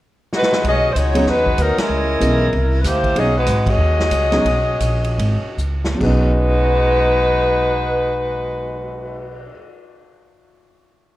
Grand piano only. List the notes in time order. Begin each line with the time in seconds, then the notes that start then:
1.15 F#3 G#3 B3 C#4 D#4
2.20 E3 G#3 B3 C#4 D#5
3.15 F#3 G#3 B3 C#4 D#4
4.32 F#3 G#3 B3 C#4 D#4
5.95 B2 F#3
6.01 G#3 C#4
6.06 D#4